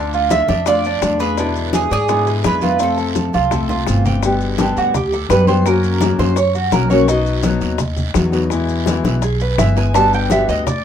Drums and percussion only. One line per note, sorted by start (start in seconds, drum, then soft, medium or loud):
0.13 high conga soft
0.13 maracas soft
0.30 high bongo soft
0.30 high conga loud
0.30 short guiro medium
0.30 maracas medium
0.48 high bongo soft
0.48 high conga medium
0.48 short guiro medium
0.48 maracas soft
0.66 high bongo medium
0.66 high conga soft
0.66 long guiro medium
0.66 maracas medium
0.84 high conga soft
0.84 maracas soft
1.02 high bongo medium
1.02 low bongo medium
1.02 high conga medium
1.02 short guiro medium
1.02 maracas medium
1.19 high bongo soft
1.19 short guiro medium
1.19 maracas soft
1.37 high bongo medium
1.37 high conga soft
1.37 long guiro medium
1.37 maracas medium
1.56 high conga soft
1.56 maracas soft
1.73 high bongo medium
1.73 high conga loud
1.73 short guiro medium
1.73 maracas medium
1.91 high bongo soft
1.91 high conga soft
1.91 short guiro medium
1.91 maracas soft
2.08 high bongo medium
2.08 high conga soft
2.08 long guiro medium
2.08 maracas medium
2.27 high bongo soft
2.27 high conga soft
2.27 maracas soft
2.44 high bongo medium
2.44 low bongo medium
2.44 high conga medium
2.44 short guiro medium
2.44 maracas medium
2.61 high bongo soft
2.61 high conga medium
2.61 short guiro medium
2.61 maracas soft
2.79 high bongo medium
2.79 long guiro medium
2.79 maracas medium
2.98 high conga soft
2.98 maracas soft
3.15 high bongo medium
3.15 high conga medium
3.15 short guiro medium
3.15 maracas medium
3.34 high bongo soft
3.34 high conga medium
3.34 short guiro medium
3.34 maracas soft
3.51 high bongo medium
3.51 low conga medium
3.51 long guiro medium
3.51 maracas medium
3.69 low conga medium
3.69 maracas soft
3.87 high bongo medium
3.87 low bongo medium
3.87 short guiro medium
3.87 maracas medium
4.05 high bongo soft
4.05 low conga medium
4.05 short guiro medium
4.05 maracas soft
4.23 high bongo medium
4.23 high conga soft
4.23 long guiro medium
4.23 maracas medium
4.41 high conga soft
4.41 maracas soft
4.58 high bongo medium
4.58 high conga loud
4.58 short guiro medium
4.58 maracas medium
4.77 high bongo soft
4.77 high conga soft
4.77 short guiro medium
4.77 maracas soft
4.94 high bongo medium
4.94 high conga soft
4.94 low conga medium
4.94 long guiro medium
4.94 maracas medium
5.12 high bongo soft
5.12 high conga soft
5.12 maracas soft
5.29 high bongo medium
5.29 low bongo medium
5.29 high conga medium
5.29 short guiro medium
5.29 maracas medium
5.47 high bongo soft
5.47 high conga medium
5.47 short guiro medium
5.47 maracas soft
5.65 high bongo medium
5.65 high conga soft
5.65 long guiro medium
5.65 maracas medium
5.83 high conga soft
5.83 maracas soft
6.01 high bongo medium
6.01 high conga loud
6.01 short guiro medium
6.01 maracas medium
6.19 high bongo soft
6.19 high conga loud
6.19 short guiro medium
6.19 maracas soft
6.36 high bongo medium
6.36 high conga soft
6.36 long guiro medium
6.36 maracas medium
6.54 high conga soft
6.54 maracas soft
6.72 high bongo medium
6.72 low bongo medium
6.72 high conga medium
6.72 short guiro medium
6.72 maracas medium
6.90 high bongo soft
6.90 high conga medium
6.90 short guiro medium
6.90 maracas soft
7.08 high bongo medium
7.08 high conga soft
7.08 long guiro medium
7.08 maracas medium
7.26 high conga soft
7.26 maracas soft
7.43 high bongo medium
7.43 high conga loud
7.43 short guiro medium
7.43 maracas medium
7.61 high bongo soft
7.61 high conga soft
7.61 short guiro medium
7.61 maracas soft
7.78 high bongo medium
7.78 high conga soft
7.78 low conga medium
7.78 long guiro medium
7.78 maracas medium
7.96 high bongo soft
7.96 high conga soft
7.96 low conga medium
7.96 maracas soft
8.14 high bongo medium
8.14 low bongo medium
8.14 high conga medium
8.14 short guiro medium
8.14 maracas medium
8.32 high bongo soft
8.32 short guiro medium
8.32 maracas soft
8.50 high bongo medium
8.50 high conga soft
8.50 long guiro medium
8.50 maracas medium
8.69 high conga soft
8.69 maracas soft
8.86 high bongo medium
8.86 high conga loud
8.86 short guiro medium
8.86 maracas medium
9.04 high bongo soft
9.04 high conga medium
9.04 short guiro medium
9.04 maracas soft
9.22 high bongo medium
9.22 high conga soft
9.22 long guiro medium
9.22 maracas medium
9.40 high conga soft
9.40 maracas soft
9.58 high bongo medium
9.58 low bongo medium
9.58 high conga medium
9.58 short guiro medium
9.58 maracas medium
9.77 high bongo soft
9.77 short guiro medium
9.77 maracas soft
9.94 high bongo medium
9.94 high conga soft
9.94 long guiro medium
9.94 maracas medium
10.12 high conga soft
10.12 maracas soft
10.30 high bongo medium
10.30 high conga loud
10.30 short guiro medium
10.30 maracas medium
10.48 high bongo soft
10.48 high conga soft
10.48 short guiro medium
10.48 maracas soft
10.67 high bongo medium
10.67 high conga soft
10.67 low conga medium
10.67 long guiro medium
10.67 maracas medium